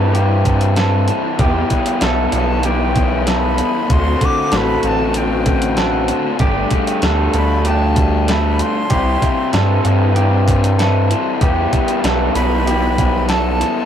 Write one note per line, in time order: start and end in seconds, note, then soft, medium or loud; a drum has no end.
0.00 1.10 G2 medium
0.00 1.38 C3 medium
0.00 0.14 E3 medium
0.00 1.39 E3 medium
0.00 0.14 G3 medium
0.00 1.40 G3 medium
0.00 0.14 C4 medium
0.00 1.39 C4 medium
0.00 0.15 E4 medium
0.00 1.41 G4 medium
0.00 0.13 A4 medium
0.13 0.76 C3 medium
0.13 0.76 E3 medium
0.13 0.47 G3 medium
0.13 0.45 C4 medium
0.13 0.44 E4 loud
0.13 0.76 G4 medium
0.13 closed hi-hat medium
0.45 0.77 G3 medium
0.45 0.77 C4 medium
0.45 0.78 E4 medium
0.45 kick medium
0.45 closed hi-hat medium
0.61 closed hi-hat medium
0.76 1.37 E3 medium
0.76 1.11 G3 medium
0.76 1.09 C4 medium
0.76 1.07 E4 medium
0.76 1.39 A4 medium
0.76 snare loud
0.76 closed hi-hat medium
1.08 1.39 G3 medium
1.08 1.38 C4 medium
1.08 1.37 E4 medium
1.08 closed hi-hat medium
1.38 3.90 E2 medium
1.38 1.64 E2 medium
1.38 3.90 B2 medium
1.38 2.00 E3 medium
1.38 1.72 G3 medium
1.38 1.71 B3 medium
1.38 1.69 E4 loud
1.38 2.03 G4 medium
1.38 3.93 G4 medium
1.38 kick loud
1.38 closed hi-hat medium
1.70 2.02 G3 medium
1.70 2.02 B3 medium
1.70 2.03 E4 medium
1.70 kick medium
1.70 closed hi-hat medium
1.86 closed hi-hat medium
2.01 2.27 B1 medium
2.01 2.62 E3 medium
2.01 2.35 G3 medium
2.01 2.33 B3 medium
2.01 2.31 E4 medium
2.01 2.65 A4 medium
2.01 snare loud
2.01 closed hi-hat medium
2.32 3.61 B1 medium
2.32 2.64 G3 medium
2.32 2.64 B3 medium
2.32 2.64 E4 medium
2.32 2.68 A5 medium
2.32 closed hi-hat medium
2.63 3.25 E3 medium
2.63 2.97 G3 medium
2.63 2.95 B3 medium
2.63 2.93 E4 medium
2.63 3.26 G4 medium
2.63 3.28 G5 medium
2.63 closed hi-hat medium
2.94 3.26 G3 medium
2.94 3.26 B3 medium
2.94 3.27 E4 medium
2.94 kick medium
2.94 closed hi-hat medium
3.26 3.88 E3 medium
3.26 3.60 G3 medium
3.26 3.58 B3 medium
3.26 3.57 E4 medium
3.26 3.90 A4 medium
3.26 snare medium
3.26 closed hi-hat medium
3.30 3.94 B5 medium
3.58 3.90 G3 medium
3.58 3.89 B3 medium
3.58 3.88 E4 medium
3.58 closed hi-hat medium
3.89 4.16 D2 medium
3.89 4.51 D3 medium
3.89 4.24 A3 medium
3.89 4.21 C4 medium
3.89 4.20 F#4 medium
3.89 4.27 C6 medium
3.89 kick loud
3.89 closed hi-hat medium
4.21 4.53 A3 medium
4.21 4.53 C4 medium
4.21 4.54 F#4 medium
4.21 kick medium
4.21 closed hi-hat medium
4.25 4.58 D6 loud
4.52 4.78 A1 medium
4.52 5.14 D3 medium
4.52 4.86 A3 medium
4.52 4.84 C4 medium
4.52 4.82 F#4 medium
4.52 5.65 A4 medium
4.52 snare loud
4.52 closed hi-hat medium
4.57 4.89 B5 loud
4.83 6.12 A1 medium
4.83 5.16 A3 medium
4.83 5.16 C4 medium
4.83 5.17 F#4 medium
4.83 closed hi-hat medium
4.87 5.19 A5 medium
5.14 5.77 D3 medium
5.14 5.49 A3 medium
5.14 5.47 C4 medium
5.14 5.45 F#4 medium
5.14 6.11 G5 medium
5.14 closed hi-hat medium
5.46 5.79 A3 soft
5.46 5.79 C4 medium
5.46 5.79 F#4 medium
5.46 kick medium
5.46 closed hi-hat medium
5.62 closed hi-hat medium
5.77 6.39 D3 medium
5.77 6.12 A3 medium
5.77 6.09 C4 medium
5.77 6.08 F#4 medium
5.77 6.40 A4 medium
5.77 snare loud
5.77 closed hi-hat medium
6.08 6.42 A3 medium
6.08 6.40 C4 medium
6.08 6.39 F#4 medium
6.08 closed hi-hat medium
6.39 6.66 G1 medium
6.39 7.03 G3 medium
6.39 6.75 A3 medium
6.39 6.73 D4 medium
6.39 7.03 G4 medium
6.39 kick loud
6.39 closed hi-hat medium
6.44 6.72 G4 medium
6.71 7.04 D4 medium
6.71 7.06 G4 medium
6.71 kick medium
6.71 closed hi-hat medium
6.75 7.05 A3 medium
6.87 closed hi-hat medium
7.02 7.29 D2 medium
7.02 7.66 G3 medium
7.02 7.38 A3 medium
7.02 7.36 D4 medium
7.02 7.35 G4 medium
7.02 7.66 A4 medium
7.02 snare loud
7.02 closed hi-hat medium
7.34 8.62 D2 medium
7.34 7.68 G4 medium
7.34 7.70 B5 medium
7.34 closed hi-hat medium
7.38 7.66 A3 medium
7.38 7.67 D4 medium
7.65 8.28 G3 medium
7.65 7.98 A3 medium
7.65 7.97 D4 medium
7.65 8.28 G4 medium
7.65 7.96 G4 medium
7.65 8.31 A5 medium
7.65 closed hi-hat medium
7.96 8.29 A3 medium
7.96 8.29 D4 medium
7.96 8.31 G4 medium
7.96 kick medium
7.96 closed hi-hat medium
8.28 8.91 G3 medium
8.28 8.61 A3 medium
8.28 8.60 D4 medium
8.28 8.59 G4 medium
8.28 8.90 A4 medium
8.28 8.63 B5 medium
8.28 snare loud
8.28 closed hi-hat medium
8.59 8.91 A3 medium
8.59 8.90 D4 medium
8.59 8.93 G4 medium
8.59 9.86 C6 loud
8.59 closed hi-hat medium
8.90 9.17 C2 medium
8.90 9.54 C3 medium
8.90 9.53 E3 medium
8.90 9.25 G3 medium
8.90 9.23 C4 medium
8.90 9.22 E4 medium
8.90 9.53 G4 medium
8.90 11.43 G4 medium
8.90 kick loud
8.90 closed hi-hat medium
9.22 9.54 G3 medium
9.22 9.55 C4 medium
9.22 9.56 E4 medium
9.22 kick medium
9.22 closed hi-hat medium
9.53 9.79 G2 medium
9.53 10.15 E3 medium
9.53 9.87 G3 medium
9.53 9.86 C4 medium
9.53 9.84 E4 medium
9.53 10.16 A4 medium
9.53 snare loud
9.53 closed hi-hat medium
9.85 11.13 G2 medium
9.85 10.15 G3 medium
9.85 10.16 C4 medium
9.85 10.17 E4 medium
9.85 closed hi-hat medium
10.15 10.78 C3 medium
10.15 10.79 E3 medium
10.15 10.49 G3 medium
10.15 10.47 C4 medium
10.15 10.46 E4 medium
10.15 10.78 G4 medium
10.15 closed hi-hat medium
10.47 10.79 G3 medium
10.47 10.80 C4 medium
10.47 10.82 E4 medium
10.47 kick medium
10.47 closed hi-hat medium
10.64 closed hi-hat medium
10.78 11.42 E3 medium
10.78 11.12 G3 medium
10.78 11.10 C4 medium
10.78 11.10 E4 medium
10.78 11.41 A4 medium
10.78 snare loud
10.78 closed hi-hat medium
11.10 11.41 G3 medium
11.10 11.41 C4 medium
11.10 11.45 E4 medium
11.10 closed hi-hat medium
11.41 11.67 E2 loud
11.41 13.85 E2 medium
11.41 13.85 B2 medium
11.41 12.04 E3 medium
11.41 11.75 G3 medium
11.41 11.74 B3 medium
11.41 12.04 G4 medium
11.41 13.85 G4 medium
11.41 kick loud
11.41 closed hi-hat medium
11.45 11.73 E4 medium
11.73 12.05 G3 medium
11.73 12.06 B3 medium
11.73 12.07 E4 medium
11.73 kick medium
11.73 closed hi-hat medium
11.88 closed hi-hat medium
12.04 12.30 B1 medium
12.04 12.66 E3 medium
12.04 12.37 G3 medium
12.04 12.37 B3 medium
12.04 12.35 E4 medium
12.04 12.67 A4 medium
12.04 snare loud
12.04 closed hi-hat medium
12.35 13.63 B1 loud
12.35 12.66 G3 medium
12.35 12.67 B3 medium
12.35 12.69 E4 medium
12.35 13.30 B5 loud
12.35 closed hi-hat medium
12.67 13.28 E3 medium
12.67 13.00 G3 medium
12.67 12.98 B3 medium
12.67 12.97 E4 loud
12.67 13.29 G4 medium
12.67 closed hi-hat medium
12.98 13.29 G3 medium
12.98 13.30 B3 medium
12.98 13.31 E4 medium
12.98 kick medium
12.98 closed hi-hat medium
13.28 13.85 E3 medium
13.28 13.62 G3 medium
13.28 13.61 B3 medium
13.28 13.59 E4 medium
13.28 13.85 A4 medium
13.28 13.85 A5 medium
13.28 snare loud
13.28 closed hi-hat medium
13.60 13.85 G3 medium
13.60 13.85 B3 medium
13.60 13.85 E4 medium
13.60 snare soft
13.60 closed hi-hat medium